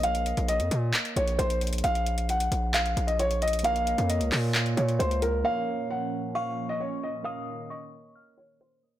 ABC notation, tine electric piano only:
X:1
M:4/4
L:1/8
Q:1/4=133
K:Bbm
V:1 name="Tine electric piano"
z8 | z8 | [B,Bdf]8 | [B,Bd]8 |
[B,Bde]6- [B,Bde] [B,Bde] |]